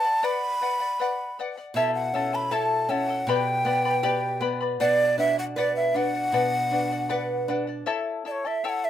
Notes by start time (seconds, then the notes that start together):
Already playing: A5
0.04 D5 F#5
0.23 B4 D5 F#5 B5
0.61 B4 D5 F#5
0.80 D5 F#5
1.00 B4 D5 F#5
1.39 B4 D5 F#5
1.57 D5 F#5
1.74 B2 E4 A4 C#5 E5 A5
1.95 F#5
2.14 C#4 E4 A4 E5 A5
2.33 E4 A4 A5 B5
2.51 E4 A4 C#5 E5 A5
2.89 C#4 E4 A4 E5 F#5 A5
3.08 E4 A4 A5
3.27 B2 G4 B4 D5 G5 B5
3.65 B3 B4 D5 G5 B5
3.85 B4 D5 B5
4.03 G4 B4 D5 G5 B5
4.40 B3 B4 D5 G5 B5
4.61 B4 D5 B5
4.80 B2 B4 D5 F#5
5.18 D4 B4 D5 E5 F#5
5.38 D5 F#5
5.56 B4 D5 F#5
5.76 E5
5.94 D4 B4 D5 F#5
6.14 D5 F#5
6.32 B2 B4 D5 F#5
6.71 D4 B4 D5 F#5
6.92 D5 F#5
7.09 B4 D5 F#5
7.48 D4 B4 D5 F#5
7.67 D5 F#5
7.86 E4 A4 C#5 E5 A5
8.25 E4 A4 D5 E5 A5
8.32 C#5
8.45 E4 A4 E5 A5
8.64 E4 A4 C#5 E5 G5 A5
8.69 F#5
8.85 E5